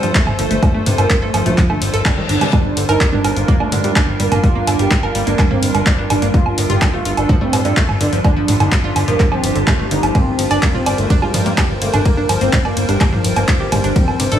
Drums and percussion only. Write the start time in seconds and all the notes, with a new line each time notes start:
0.03 closed hi-hat
0.15 kick, clap, closed hi-hat
0.27 mid tom, low woodblock
0.39 open hi-hat
0.51 closed hi-hat
0.63 kick, closed hi-hat, low woodblock
0.86 mid tom, open hi-hat
0.98 closed hi-hat, low woodblock
1.10 kick, clap, closed hi-hat
1.34 open hi-hat, low woodblock
1.46 closed hi-hat, mid tom
1.58 kick, clap, closed hi-hat
1.70 low woodblock
1.82 open hi-hat
1.94 closed hi-hat
2.05 kick, clap, closed hi-hat, mid tom, low woodblock
2.29 open hi-hat
2.41 closed hi-hat, low woodblock
2.53 kick, closed hi-hat, mid tom, low woodblock
2.77 open hi-hat
2.89 closed hi-hat, low woodblock
3.01 kick, clap, closed hi-hat
3.13 mid tom
3.25 open hi-hat, low woodblock
3.36 closed hi-hat
3.48 kick, closed hi-hat
3.60 low woodblock
3.72 mid tom, open hi-hat
3.84 closed hi-hat
3.96 kick, clap, closed hi-hat, low woodblock
4.20 open hi-hat
4.32 closed hi-hat, mid tom, low woodblock
4.44 kick, closed hi-hat
4.67 open hi-hat, low woodblock
4.79 closed hi-hat
4.91 kick, clap, closed hi-hat, mid tom
5.03 low woodblock
5.15 open hi-hat
5.27 closed hi-hat
5.39 kick, clap, closed hi-hat, low woodblock
5.51 mid tom
5.63 open hi-hat
5.75 closed hi-hat, low woodblock
5.86 kick, clap, closed hi-hat
6.10 mid tom, open hi-hat, low woodblock
6.22 closed hi-hat
6.34 kick, closed hi-hat
6.46 low woodblock
6.58 open hi-hat
6.70 closed hi-hat, mid tom
6.82 kick, clap, closed hi-hat, low woodblock
7.05 open hi-hat
7.17 closed hi-hat, low woodblock
7.29 kick, closed hi-hat, mid tom
7.53 open hi-hat, low woodblock
7.65 closed hi-hat
7.77 kick, clap, closed hi-hat
7.89 mid tom, low woodblock
8.01 open hi-hat
8.13 closed hi-hat
8.24 kick, closed hi-hat, low woodblock
8.48 mid tom, open hi-hat
8.60 closed hi-hat, low woodblock
8.72 kick, clap, closed hi-hat
8.96 open hi-hat, low woodblock
9.08 closed hi-hat, mid tom
9.20 kick, clap, closed hi-hat
9.32 low woodblock
9.44 open hi-hat
9.56 closed hi-hat
9.67 kick, clap, closed hi-hat, mid tom, low woodblock
9.91 open hi-hat
10.03 closed hi-hat, low woodblock
10.15 kick, closed hi-hat, mid tom, ride, low woodblock
10.39 open hi-hat, ride
10.51 closed hi-hat, low woodblock
10.63 kick, clap, closed hi-hat, ride
10.75 mid tom
10.86 open hi-hat, ride, low woodblock
10.98 closed hi-hat
11.10 kick, closed hi-hat, ride
11.22 low woodblock
11.34 mid tom, open hi-hat, ride
11.46 closed hi-hat
11.58 kick, clap, closed hi-hat, ride, low woodblock
11.82 open hi-hat, ride
11.94 closed hi-hat, mid tom, low woodblock
12.05 kick, closed hi-hat, ride
12.29 open hi-hat, ride, low woodblock
12.41 closed hi-hat
12.53 kick, clap, closed hi-hat, mid tom, ride
12.65 low woodblock
12.77 open hi-hat, ride
12.89 closed hi-hat
13.01 kick, clap, closed hi-hat, ride, low woodblock
13.13 mid tom
13.24 open hi-hat, ride
13.36 closed hi-hat, low woodblock
13.48 kick, clap, closed hi-hat, ride
13.72 mid tom, open hi-hat, ride, low woodblock
13.84 closed hi-hat
13.96 kick, closed hi-hat, ride
14.08 low woodblock
14.20 open hi-hat, ride
14.32 closed hi-hat, mid tom